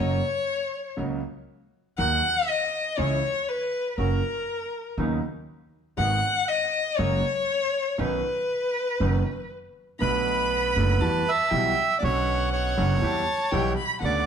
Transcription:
Already playing: F#3 C#5
0.00 F#1 F#2 C#3 A#3 F#4
0.97 C#2 C#3 F#3 A#3 F#4
1.98 D#2 D#3 F#3 A#3 D#4 F#4 A#4 F#5
2.48 D#5
2.97 C#2 C#3 E3 G#3 C#4 E4 G#4 C#5
3.49 B4
3.98 F#1 F#2 C#3 F#3 A#3 C#4 F#4 A#4
4.98 D#2 C#3 D#3 F#3 B3 C#4 D#4 B4
5.97 G#1 G#2 D#3 G#3 B3 F#4 G#4 F#5
6.48 D#5
6.97 F#1 F#2 C#3 F#3 G#3 A#3 F#4 G#4 C#5
7.98 B1 B2 D#3 B3 C#4 D#4 F#4 B4
9.00 F#1 F#2 D#3 B3 C#4 D#4 F#4 B4
9.99 B1 B2 D3 A3 B3 D4 A4 B4 B5
10.03 F#4
10.76 F#1 F#2 D3 A3 B3 D4 F#4 A4
11.00 E2 E3 G3 B3 E4 F#4 A5
11.29 E5
11.49 B1 B2 E3 G3 B3 E4 F#4 G5
11.98 B1 D3 B3 C#4 B4 D5 F#5
12.03 B1 B2 C#4 F#4 C#5
12.53 C#5
12.76 F#1 F#2 D3 B3 C#4 D4 F#4 B4
13.01 E2 E3 G3 B3 E4 G4 B4 A5
13.51 B1 B2 E3 G3 B3 E4 G4 B4 G5
13.77 B5
14.00 D2 C#3 D3 B3 B4 F#5
14.04 F#4 D5

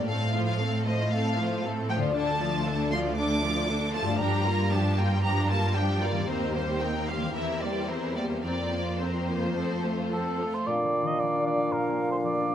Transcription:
Already playing: A2 A3
0.00 C4 F4
0.08 A2 A3 C4 A4 F5
0.34 F3 A3 F4 C5
0.46 F5
0.59 A3 C4 A4
0.85 F3 A3 F4 C5 D#5
1.12 A3 C4 A4 F5
1.38 F3 A3 F4 C5
1.63 A3 C4 A4
1.89 F3 A3 F4 C5 G5
1.96 D3
2.01 A3
2.05 D4
2.10 F4
2.15 D2 D3 D4 A4 A5
2.40 F3 A3 F4 D5
2.66 D3 D4 A4
2.91 F3 A3 F4 D5 C6
3.17 D3 D4 A4 D6
3.43 F3 A3 F4 D5
3.68 D3 D4 A4
3.94 F3 A3 F4 D5 A5
4.02 G2
4.06 G3
4.11 D4
4.15 F4
4.19 G2 F3 D4 G4 A#5
4.45 G3 A#3 F4 A#4
4.71 F3 D4 G4 A5
4.97 G3 A#3 F4 A#4 G5
5.23 F3 D4 G4 A#5
5.48 G3 A#3 F4 A#4 A5
5.75 F3 D4 G4 G5
6.01 G3 A#3 F4 A#4 D5
6.11 D#3
6.15 A#3
6.20 C4
6.24 D#4 G4
6.28 D#2 A#3 C4 A#4 C5
6.54 G3 A#3 G4 C5
6.81 A#3 C4 D#4 A#4 G5
7.07 G3 A#3 G4 C5 F5
7.17 E3
7.21 A#3
7.26 C4
7.30 G4
7.34 E2 E3 C4 E4 A#4 E5
7.61 G3 A#3 G4 C5 D5
7.88 E3 C4 E4 A#4 C5
8.15 G3 A#3 G4 C5 D5
8.25 F3
8.29 A#3
8.34 C4
8.38 F4
8.43 F2 C4 A#4 D5
8.72 A#3 F4 C5
9.00 C4 A#4 C5
9.29 A#3 F4 C5
9.38 F3
9.42 A3
9.47 C4
9.51 F4
9.56 F3 C4 A4 C5
9.84 A3 F4 A4
10.12 F3 C4 A4 C5
10.40 A3 F4 A4
10.54 C5
10.66 A#2 D4 D5 F5
10.84 F3
11.02 D#3
11.07 D#5
11.19 F3 D5
11.36 D4
11.46 D5
11.54 F3
11.72 A#2 A#4
11.89 A#3
12.07 A3
12.12 C5
12.24 F3 D5
12.41 D4

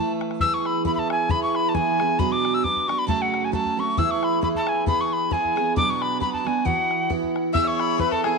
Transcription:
Already playing: E3 A3 A5
0.00 E4 B4
0.21 bodhran
0.31 bodhran
0.40 E3 B3 E4 G#4 E6, bodhran
0.54 C#6
0.65 B5, bodhran
0.85 E3 B3 E4 G#4 B5, bodhran
0.95 B5, bodhran
0.99 A5
1.10 G#5, bodhran
1.29 E3 B3 E4 G#4 B5, bodhran
1.43 C#6
1.55 B5, bodhran
1.69 A5
1.74 E3 B3 E4 G#4 G#5, bodhran
1.99 B3 E4 G#4, bodhran
2.19 B2 F#3 B3 D4 F#4 B5, bodhran
2.32 D6
2.45 bodhran
2.54 E6
2.64 F#3 B3 D4 F#4 D6, bodhran
2.76 bodhran
2.88 B3 D4 F#4 C#6, bodhran
2.98 B5
3.07 F#2 C#3 F#3 A3 C#4 F#4 A5, bodhran
3.22 F#5
3.34 bodhran
3.44 G#5
3.52 F#3 A3 C#4 F#4 A5, bodhran
3.65 bodhran
3.77 F#3 A3 C#4 F#4 C#6
3.97 E3 B3 E4 G#4 E6, bodhran
4.11 C#6
4.23 B5, bodhran
4.41 E3 B3 E4 G#4 B5, bodhran
4.55 A5, bodhran
4.67 G#5, bodhran
4.86 E3 B3 E4 G#4 B5, bodhran
5.01 C#6
5.13 B5
5.31 E3 B3 E4 G#4 G#5, bodhran
5.45 bodhran
5.56 B3 E4 G#4, bodhran
5.76 B2 F#3 B3 D4 F#4 D6, bodhran
5.90 C#6
6.01 B5, bodhran
6.20 F#3 B3 D4 F#4 B5, bodhran
6.33 A5, bodhran
6.45 B3 D4 F#4 G#5, bodhran
6.65 E3 B3 E4 F#4 F#5, bodhran
6.91 bodhran
7.10 E3 B3 E4 F#4, bodhran
7.23 bodhran
7.36 bodhran
7.53 E3 B3 E4 G#4 E5 E6, bodhran
7.66 C#5 C#6
7.79 B5, bodhran
7.98 E3 B3 E4 G#4 B4 B5, bodhran
8.11 A4 A5, bodhran
8.24 B3 E4 G#4 G#5, bodhran

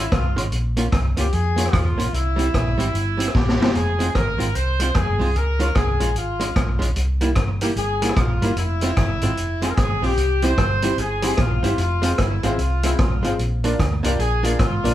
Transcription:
Already playing: E4
0.12 C2 F4, kick, cross-stick, closed hi-hat
0.36 G#1 G#3 C#4 F4, closed hi-hat
0.52 A#1, closed hi-hat
0.77 A#3 C#4 F4, closed hi-hat
0.92 C2, kick, cross-stick, closed hi-hat
1.17 C#2 A#3 C#4 F4 G4, closed hi-hat
1.33 F2 G#4, closed hi-hat
1.56 A#3 C#4 F4, closed hi-hat
1.66 cross-stick
1.73 E2 F4, kick, cross-stick, closed hi-hat
1.98 A#1 A#3 C#4 F4, closed hi-hat
2.13 C2 E4, closed hi-hat
2.36 G3 C4 E4, closed hi-hat
2.54 A#1, kick, cross-stick, closed hi-hat
2.78 G#1 G3 C4 E4, closed hi-hat
2.94 G1, closed hi-hat
3.17 G3 C4 E4, closed hi-hat
3.28 cross-stick
3.34 A#1 G4, kick, snare
3.49 snare
3.59 G1 G3 C4 E4, snare
3.75 F1 G#4, closed hi-hat
3.99 G#3 C4 F4, closed hi-hat
4.15 G#1 A#4, kick, cross-stick, closed hi-hat
4.38 G#1 G#3 C4 F4, closed hi-hat
4.55 C2 C5, closed hi-hat
4.80 G#3 C4 F4, closed hi-hat
4.95 F1 G#4, kick, cross-stick, closed hi-hat
5.19 C2 G#3 C4 F4, open hi-hat
5.35 C#2 A#4, closed hi-hat
5.59 G#3 C#4 F4, closed hi-hat
5.75 C2 G#4, kick, cross-stick, closed hi-hat
6.00 A#1 G#3 C#4 F4, closed hi-hat
6.16 G#1 F4, closed hi-hat
6.40 G#3 C#4 F4, closed hi-hat
6.56 A#1, kick, cross-stick, closed hi-hat
6.79 A#1 G#3 C#4 F4, closed hi-hat
6.96 C2, closed hi-hat
7.21 G3 A#3 E4, closed hi-hat
7.36 G1, kick, cross-stick, closed hi-hat
7.61 G3 A#3 E4 G4, closed hi-hat
7.76 G1 G#4, closed hi-hat
8.02 G3 A#3 E4, closed hi-hat
8.09 cross-stick
8.16 A#1 F4, kick, cross-stick, closed hi-hat
8.41 G1 G3 A#3 E4, closed hi-hat
8.56 F1 E4, closed hi-hat
8.81 G#3 C4 F4, closed hi-hat
8.97 G1, kick, cross-stick, closed hi-hat
9.21 G#1 G#3 C4 F4, closed hi-hat
9.37 F1, closed hi-hat
9.62 G#3 C4 F4 G#4, closed hi-hat
9.68 A#4
9.74 G#1 G#4, kick, cross-stick, closed hi-hat
10.02 A#1 G#3 C4 F4 G4, open hi-hat
10.17 C2, closed hi-hat
10.42 G3 C4 E4 G4 C5, closed hi-hat
10.58 G1, kick, cross-stick, closed hi-hat
10.82 G3 C4 E4 G4 C5, closed hi-hat
10.98 G1 G#4, closed hi-hat
11.22 G3 C4 E4 G4 G#4 C5, closed hi-hat
11.37 A#1 F4, kick, cross-stick, closed hi-hat
11.63 G1 G3 C4 E4 G4 C5, closed hi-hat
11.77 F1 F4, closed hi-hat
12.02 G#3 C4 F4 G#4 C5, closed hi-hat
12.18 G1 E4, kick, cross-stick, closed hi-hat
12.43 G#1 G#3 C4 E4 F4 G#4 C5, closed hi-hat
12.58 C2 F4, closed hi-hat
12.83 G#3 C4 E4 F4 G#4 C5, closed hi-hat
12.99 A#1 F4, kick, cross-stick, closed hi-hat
13.23 G#1 G#3 C4 F4 G#4 C5, closed hi-hat
13.39 A#1, closed hi-hat
13.64 A#3 D4 F4 A#4 D5, closed hi-hat
13.79 D2, kick, cross-stick, closed hi-hat
14.03 C2 A#3 D4 F4 G4 A#4 D5, closed hi-hat
14.19 A#1 G#4, closed hi-hat
14.43 A#3 D4 F4 A#4 D5, closed hi-hat
14.59 G#1 F4, kick, cross-stick, closed hi-hat
14.83 A#1 A#3 D4 F4 A#4 D5, closed hi-hat

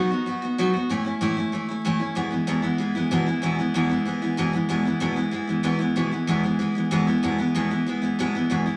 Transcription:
Already playing: B2 F#3 B3 D#4
0.11 B3 D#4 F#4
0.26 F#3 B3 D#4 F#4
0.42 B3 D#4 F#4
0.58 B2 F#3 B3 D#4 F#4
0.73 B3 D#4 F#4
0.89 A2 E3 A3 C#4 E4
1.04 A3 C#4 E4
1.21 A2 E3 A3 C#4 E4
1.37 A3 C#4 E4
1.52 E3 A3 C#4 E4
1.68 A3 C#4 E4
1.85 A2 E3 A3 C#4 E4
2.00 A3 C#4 E4
2.15 E2 B2 E3 G#3 B3 E4
2.31 E3 G#3 B3 E4
2.47 E2 B2 E3 G#3 B3 E4
2.62 E3 G#3 B3 E4
2.78 E3 G#3 B3 E4
2.95 E3 G#3 B3 E4
3.11 E2 B2 E3 G#3 B3 E4
3.26 E3 G#3 B3 E4
3.42 E2 B2 E3 G#3 B3 E4
3.59 E3 G#3 B3 E4
3.74 E2 B2 E3 G#3 B3 E4
3.89 E3 G#3 B3 E4
4.05 E3 G#3 B3 E4
4.22 E3 G#3 B3 E4
4.37 E2 B2 E3 G#3 B3 E4
4.53 E3 G#3 B3 E4
4.69 E2 B2 E3 G#3 B3 E4
4.85 E3 G#3 B3 E4
5.00 E2 B2 E3 G#3 B3 E4
5.16 E3 G#3 B3 E4
5.31 E3 G#3 B3 E4
5.47 E3 G#3 B3 E4
5.63 E2 B2 E3 G#3 B3 E4
5.79 E3 G#3 B3 E4
5.96 E2 B2 E3 G#3 B3 E4
6.11 E3 G#3 B3 E4
6.27 E2 B2 E3 G#3 B3 E4
6.43 E3 G#3 B3 E4
6.59 E3 G#3 B3 E4
6.75 E3 G#3 B3 E4
6.91 E2 B2 E3 G#3 B3 E4
7.07 E3 G#3 B3 E4
7.23 E2 B2 E3 G#3 B3 E4
7.38 E3 G#3 B3 E4
7.55 E2 B2 E3 G#3 B3 E4
7.70 E3 G#3 B3 E4
7.86 E3 G#3 B3 E4
8.02 E3 G#3 B3 E4
8.19 E2 B2 E3 G#3 B3 E4
8.35 E3 G#3 B3 E4
8.50 E2 B2 E3 G#3 B3 E4
8.66 E3 G#3 B3 E4

